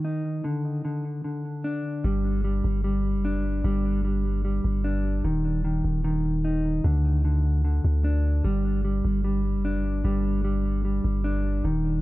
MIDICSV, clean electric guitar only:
0, 0, Header, 1, 2, 480
1, 0, Start_track
1, 0, Tempo, 400000
1, 534, Time_signature, 4, 2, 24, 8
1, 14419, End_track
2, 0, Start_track
2, 0, Title_t, "Clean electric guitar"
2, 0, Program_c, 0, 27
2, 0, Note_on_c, 0, 51, 75
2, 54, Note_on_c, 0, 63, 80
2, 528, Note_off_c, 0, 51, 0
2, 532, Note_on_c, 0, 50, 86
2, 534, Note_off_c, 0, 63, 0
2, 1002, Note_off_c, 0, 50, 0
2, 1016, Note_on_c, 0, 50, 64
2, 1478, Note_off_c, 0, 50, 0
2, 1493, Note_on_c, 0, 50, 67
2, 1972, Note_on_c, 0, 62, 91
2, 2452, Note_on_c, 0, 55, 85
2, 2453, Note_off_c, 0, 62, 0
2, 2454, Note_off_c, 0, 50, 0
2, 2917, Note_off_c, 0, 55, 0
2, 2931, Note_on_c, 0, 55, 70
2, 3396, Note_off_c, 0, 55, 0
2, 3411, Note_on_c, 0, 55, 71
2, 3896, Note_on_c, 0, 62, 96
2, 4360, Note_off_c, 0, 55, 0
2, 4374, Note_on_c, 0, 55, 88
2, 4838, Note_off_c, 0, 55, 0
2, 4853, Note_on_c, 0, 55, 71
2, 5322, Note_off_c, 0, 55, 0
2, 5336, Note_on_c, 0, 55, 72
2, 5798, Note_off_c, 0, 62, 0
2, 5813, Note_on_c, 0, 62, 97
2, 6293, Note_off_c, 0, 62, 0
2, 6294, Note_on_c, 0, 51, 87
2, 6295, Note_off_c, 0, 55, 0
2, 6759, Note_off_c, 0, 51, 0
2, 6773, Note_on_c, 0, 51, 76
2, 7238, Note_off_c, 0, 51, 0
2, 7252, Note_on_c, 0, 51, 80
2, 7735, Note_on_c, 0, 63, 83
2, 8208, Note_off_c, 0, 51, 0
2, 8213, Note_on_c, 0, 50, 88
2, 8215, Note_off_c, 0, 63, 0
2, 8682, Note_off_c, 0, 50, 0
2, 8696, Note_on_c, 0, 50, 67
2, 9159, Note_off_c, 0, 50, 0
2, 9174, Note_on_c, 0, 50, 68
2, 9653, Note_on_c, 0, 62, 91
2, 10133, Note_off_c, 0, 62, 0
2, 10133, Note_on_c, 0, 55, 85
2, 10134, Note_off_c, 0, 50, 0
2, 10599, Note_off_c, 0, 55, 0
2, 10614, Note_on_c, 0, 55, 72
2, 11078, Note_off_c, 0, 55, 0
2, 11092, Note_on_c, 0, 55, 69
2, 11577, Note_on_c, 0, 62, 97
2, 12041, Note_off_c, 0, 55, 0
2, 12056, Note_on_c, 0, 55, 91
2, 12518, Note_off_c, 0, 55, 0
2, 12533, Note_on_c, 0, 55, 72
2, 13002, Note_off_c, 0, 55, 0
2, 13016, Note_on_c, 0, 55, 76
2, 13477, Note_off_c, 0, 62, 0
2, 13492, Note_on_c, 0, 62, 93
2, 13973, Note_off_c, 0, 62, 0
2, 13974, Note_on_c, 0, 51, 84
2, 13975, Note_off_c, 0, 55, 0
2, 14419, Note_off_c, 0, 51, 0
2, 14419, End_track
0, 0, End_of_file